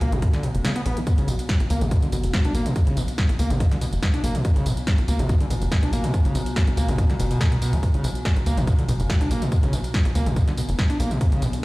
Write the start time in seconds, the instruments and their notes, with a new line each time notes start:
Already playing: synth drone B2
0.01 analog synth bass D2, acid bass A#3, open hi-hat
0.12 analog synth bass B1, acid bass B2, closed hi-hat
0.22 acid bass B2, kick, closed hi-hat
0.33 acid bass D3, snare, closed hi-hat
0.43 acid bass B2, open hi-hat
0.55 analog synth bass F#1, closed hi-hat
0.65 acid bass C#3, snare, closed hi-hat
0.76 acid bass B3, closed hi-hat
0.86 analog synth bass B1, acid bass B3, open hi-hat
0.97 acid bass B2, closed hi-hat
1.07 synth drone B2, acid bass B2, kick, closed hi-hat, tambourine
1.18 analog synth bass B1, acid bass C#3, closed hi-hat, tambourine
1.28 analog synth bass B1, acid bass B2, open hi-hat, tambourine
1.39 closed hi-hat, tambourine
1.49 kick, snare, closed hi-hat, tambourine
1.60 analog synth bass B1, closed hi-hat, tambourine
1.70 analog synth bass D2, acid bass A#3, open hi-hat, tambourine
1.81 analog synth bass B1, acid bass B2, closed hi-hat, tambourine
1.91 acid bass B2, kick, closed hi-hat, tambourine
2.02 acid bass D3, closed hi-hat, tambourine
2.12 analog synth bass B1, acid bass B2, open hi-hat, tambourine
2.24 analog synth bass F#1, closed hi-hat, tambourine
2.34 acid bass B2, kick, snare, closed hi-hat, tambourine
2.45 analog synth bass C#2, acid bass D4, closed hi-hat, tambourine
2.55 analog synth bass B1, acid bass A#3, open hi-hat, tambourine
2.66 acid bass B2, closed hi-hat, tambourine
2.76 acid bass B2, kick, closed hi-hat, tambourine
2.87 analog synth bass B1, acid bass C#3, closed hi-hat, tambourine
2.97 analog synth bass B1, acid bass B2, open hi-hat, tambourine
3.08 closed hi-hat, tambourine
3.18 kick, snare, closed hi-hat
3.29 analog synth bass B1, closed hi-hat, tambourine
3.39 analog synth bass D2, acid bass A#3, open hi-hat, tambourine
3.50 analog synth bass B1, acid bass B2, closed hi-hat, tambourine
3.60 acid bass B2, kick, closed hi-hat, tambourine
3.71 acid bass D3, snare, closed hi-hat, tambourine
3.81 acid bass B2, open hi-hat, tambourine
3.93 analog synth bass F#1, closed hi-hat, tambourine
4.03 acid bass B2, kick, snare, closed hi-hat, tambourine
4.14 acid bass D4, closed hi-hat, tambourine
4.24 analog synth bass B1, acid bass A#3, open hi-hat, tambourine
4.35 acid bass B2, closed hi-hat, tambourine
4.45 acid bass B2, kick, closed hi-hat, tambourine
4.56 analog synth bass B1, acid bass C#3, closed hi-hat, tambourine
4.66 analog synth bass B1, acid bass B2, open hi-hat, tambourine
4.77 closed hi-hat, tambourine
4.87 kick, snare, closed hi-hat, tambourine
4.98 analog synth bass B1, closed hi-hat, tambourine
5.08 analog synth bass D2, acid bass A#3, open hi-hat, tambourine
5.19 analog synth bass B1, acid bass B2, closed hi-hat, tambourine
5.29 acid bass B2, kick, closed hi-hat, tambourine
5.40 acid bass D3, closed hi-hat, tambourine
5.50 analog synth bass B1, acid bass B2, open hi-hat, tambourine
5.62 analog synth bass F#1, closed hi-hat, tambourine
5.72 acid bass B2, kick, snare, closed hi-hat, tambourine
5.83 analog synth bass C#2, acid bass D4, closed hi-hat, tambourine
5.93 analog synth bass B1, acid bass A#3, open hi-hat, tambourine
6.04 acid bass B2, closed hi-hat, tambourine
6.14 acid bass B2, kick, closed hi-hat, tambourine
6.25 analog synth bass B1, acid bass C#3, closed hi-hat, tambourine
6.35 analog synth bass B1, acid bass B2, open hi-hat, tambourine
6.46 closed hi-hat, tambourine
6.56 kick, snare, closed hi-hat, tambourine
6.67 analog synth bass B1, closed hi-hat, tambourine
6.77 analog synth bass D2, acid bass A#3, open hi-hat, tambourine
6.88 analog synth bass B1, acid bass B2, closed hi-hat, tambourine
6.98 acid bass B2, kick, closed hi-hat, tambourine
7.10 acid bass D3, snare, closed hi-hat, tambourine
7.20 analog synth bass F#1, acid bass B2, open hi-hat, tambourine
7.31 acid bass B2, closed hi-hat, tambourine
7.41 acid bass B2, kick, snare, closed hi-hat, tambourine
7.52 acid bass B2, closed hi-hat, tambourine
7.62 acid bass B2, open hi-hat, tambourine
7.73 analog synth bass D2, acid bass F#3, closed hi-hat, tambourine
7.83 acid bass B2, kick, closed hi-hat, tambourine
7.94 analog synth bass B1, acid bass C#3, closed hi-hat, tambourine
8.04 analog synth bass B1, acid bass B2, open hi-hat, tambourine
8.15 closed hi-hat, tambourine
8.25 kick, snare, closed hi-hat, tambourine
8.36 analog synth bass B1, closed hi-hat, tambourine
8.46 analog synth bass D2, acid bass A#3, open hi-hat, tambourine
8.57 analog synth bass B1, acid bass B2, closed hi-hat, tambourine
8.67 acid bass B2, kick, closed hi-hat, tambourine
8.79 acid bass D3, closed hi-hat, tambourine
8.89 analog synth bass B1, acid bass B2, open hi-hat, tambourine
9.00 analog synth bass F#1, closed hi-hat, tambourine
9.10 acid bass B2, kick, snare, closed hi-hat, tambourine
9.21 analog synth bass C#2, acid bass D4, closed hi-hat, tambourine
9.31 analog synth bass B1, acid bass A#3, open hi-hat, tambourine
9.42 acid bass B2, closed hi-hat, tambourine
9.52 acid bass B2, kick, closed hi-hat, tambourine
9.63 analog synth bass B1, acid bass C#3, closed hi-hat, tambourine
9.73 analog synth bass B1, acid bass B2, open hi-hat, tambourine
9.84 closed hi-hat, tambourine
9.94 kick, snare, closed hi-hat, tambourine
10.05 analog synth bass B1, closed hi-hat, tambourine
10.15 analog synth bass D2, acid bass A#3, open hi-hat, tambourine
10.26 analog synth bass B1, acid bass B2, closed hi-hat, tambourine
10.36 acid bass B2, kick, closed hi-hat, tambourine
10.48 acid bass D3, snare, closed hi-hat, tambourine
10.57 acid bass B2, open hi-hat, tambourine
10.69 analog synth bass F#1, closed hi-hat, tambourine
10.79 acid bass B2, kick, snare, closed hi-hat
10.90 acid bass D4, closed hi-hat, tambourine
11.00 analog synth bass B1, acid bass A#3, open hi-hat, tambourine
11.11 acid bass B2, closed hi-hat, tambourine
11.21 acid bass B2, kick, closed hi-hat, tambourine, riser
11.32 analog synth bass B1, acid bass C#3, closed hi-hat, tambourine
11.42 analog synth bass B1, acid bass B2, open hi-hat, tambourine
11.53 closed hi-hat, tambourine